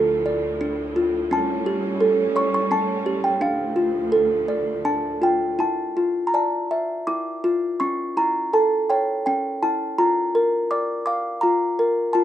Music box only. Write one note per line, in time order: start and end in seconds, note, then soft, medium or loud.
0.00 0.60 D4 medium
0.00 0.95 F4 medium
0.00 1.31 A4 medium
0.00 0.57 A5 medium
0.26 1.31 D5 medium
0.61 1.31 D4 medium
0.96 1.31 F4 medium
1.31 2.70 C#4 medium
1.31 2.40 A5 medium
1.66 3.05 G4 medium
2.00 3.41 A4 medium
2.36 3.41 C#5 medium
2.36 2.52 C#6 loud
2.54 2.72 C#6 medium
2.71 3.41 C#4 medium
2.71 3.26 A5 medium
3.06 3.41 G4 medium
3.24 3.42 G5 medium
3.41 4.84 D4 medium
3.41 4.82 F5 medium
3.76 5.20 F4 medium
4.12 5.59 A4 medium
4.48 5.59 D5 medium
4.85 5.59 D4 medium
4.85 5.23 A5 medium
5.22 5.59 F4 medium
5.22 5.40 G5 medium
5.59 7.06 E4 medium
5.59 6.29 A5 medium
5.97 7.43 F4 medium
6.27 6.34 A#5 medium
6.34 7.81 D5 medium
6.34 7.10 A5 medium
6.71 7.81 E5 medium
7.07 7.81 E4 medium
7.07 7.83 D6 medium
7.44 7.81 F4 medium
7.80 9.26 C#4 medium
7.80 8.15 C#6 medium
8.17 9.61 E4 medium
8.17 8.34 A#5 medium
8.53 9.98 A4 medium
8.53 8.88 A5 medium
8.90 9.98 C#5 medium
8.90 9.24 G5 medium
9.26 9.99 C#4 medium
9.26 9.63 G5 medium
9.63 9.99 E4 medium
9.63 10.00 A5 medium
9.98 11.42 F4 medium
9.98 10.72 A#5 medium
10.35 11.78 A#4 medium
10.71 12.15 D5 medium
10.71 11.05 D6 medium
11.06 12.15 F5 medium
11.06 11.40 D6 medium
11.41 12.14 F4 medium
11.41 12.10 A#5 medium
11.79 12.15 A#4 medium
12.13 12.24 F4 medium
12.13 12.24 A5 medium